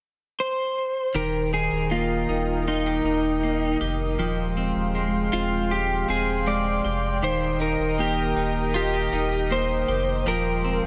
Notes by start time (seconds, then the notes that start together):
0.40 C5
1.14 D#1 D#3 G4 A#4 D#5 G5 D#6
1.53 D#4 G#4
1.72 D#1
1.91 A#3 F4
2.28 D#1 D#4
2.68 D#4 F4
2.86 G4
3.04 D#1 D#4
3.43 A#3
3.81 F1 G4
4.19 D#1 F3 G#3 G4 F5 G5 C6
4.57 C4
4.75 D#1
4.95 G#3
5.33 D#1 C4 F4
5.71 G4
6.08 D#1 C4 G#4
6.46 G#3 D5
6.85 F1 G4
7.22 D#1 D#3 G4 A#4 C5 D#5 D#6
7.60 D#4 A#4
7.79 D#1
7.98 A#3 G4
8.36 D#1 D#4
8.74 F4 G4
8.94 G4
9.12 D#1 D#4
9.50 A#3 C5
9.88 F1 G4
10.25 D#1 F3 G#3 G4 A#4 F5 G5 C6
10.65 C4
10.83 D#1